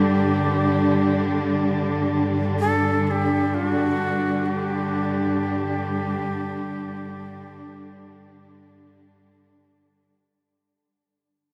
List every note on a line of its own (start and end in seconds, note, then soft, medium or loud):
0.00 10.11 G2 medium
0.00 10.11 D3 medium
0.00 10.12 G3 medium
0.00 10.12 D4 medium
0.00 2.11 G4 medium
2.60 3.07 A4 medium
3.07 3.12 A4 medium
3.11 3.56 G4 medium
3.54 3.66 F4 medium
3.66 4.47 F#4 medium
4.46 9.16 G4 medium